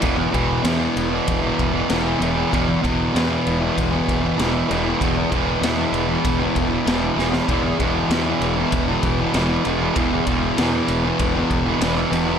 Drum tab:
RD |x-x-x-x-x-x-x-x-|x-x-x-x-x-x-x-x-|x-x-x-x-x-x-x---|x-x-x-x-x-x-x-x-|
SD |----o-------o---|----o-------o---|----o-------o-oo|----o-------o---|
BD |o-o-----o-o-----|o-o-----o-o-----|o-o-----o-o-----|o-o-----o-o-----|

RD |x-x-x-x-x-x-x-x-|
SD |----o-------o---|
BD |o-o-----o-o-----|